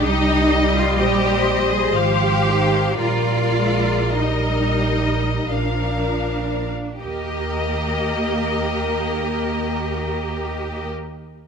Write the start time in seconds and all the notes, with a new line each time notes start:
Already playing: G4
0.05 C2 G3 D#4 D#5
0.76 F4
0.98 A#1 G4 C5 D#5
1.72 G#4
1.95 G#1 F3 G4 F5
2.47 D#3
2.98 A#1 G3 F4 A#4 D5
3.57 G#3
4.17 G3 D#4 D#5
5.50 A#1 F3 D4 A#4 F5
7.02 D#2 A#3 G4 A#4 D#5